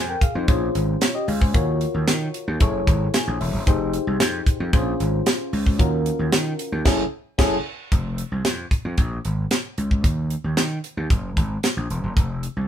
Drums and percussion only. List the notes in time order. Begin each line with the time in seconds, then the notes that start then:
0.21 kick, closed hi-hat
0.48 kick, closed hi-hat
0.75 closed hi-hat
1.01 snare, closed hi-hat
1.28 open hi-hat
1.42 kick
1.54 kick, closed hi-hat
1.81 closed hi-hat
2.08 snare, closed hi-hat
2.34 closed hi-hat
2.60 kick, closed hi-hat
2.87 kick, closed hi-hat
3.14 snare, closed hi-hat
3.41 open hi-hat
3.67 kick, closed hi-hat
3.93 closed hi-hat
4.20 snare, closed hi-hat
4.46 kick, closed hi-hat
4.73 kick, closed hi-hat
5.00 closed hi-hat
5.26 snare, closed hi-hat
5.53 open hi-hat
5.66 kick
5.79 kick, closed hi-hat
6.06 closed hi-hat
6.32 snare, closed hi-hat
6.59 closed hi-hat
6.85 kick, snare, crash
7.39 kick, snare, crash
7.92 kick, closed hi-hat
8.18 closed hi-hat
8.45 snare, closed hi-hat
8.71 kick, closed hi-hat
8.98 kick, closed hi-hat
9.25 closed hi-hat
9.51 snare, closed hi-hat
9.78 closed hi-hat
9.91 kick
10.04 kick, closed hi-hat
10.30 closed hi-hat
10.57 snare, closed hi-hat
10.84 closed hi-hat
11.10 kick, closed hi-hat
11.37 kick, closed hi-hat
11.63 snare, closed hi-hat
11.90 closed hi-hat
12.17 kick, closed hi-hat
12.43 closed hi-hat